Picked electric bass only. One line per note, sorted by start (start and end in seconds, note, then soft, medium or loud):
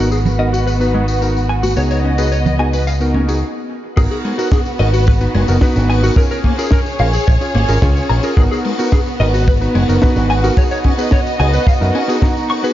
0.00 1.74 G#1 medium
1.77 3.42 C#2 medium
3.97 4.06 G#1 medium
4.80 5.26 G#1 medium
5.35 5.43 F#1 medium
5.48 5.57 F#1 medium
5.76 6.09 G#1 loud
7.00 7.17 A#1 medium
7.28 7.36 A#1 medium
7.55 7.63 G#1 medium
7.68 7.77 G#1 medium
7.82 7.99 C#2 medium
8.10 8.18 A#1 loud
8.37 8.46 G#1 medium
9.20 9.66 G#1 loud
9.75 9.83 F#1 medium
9.89 9.97 F#1 medium
10.16 10.49 G#1 loud
11.40 11.57 C#2 loud
11.81 11.90 F#2 medium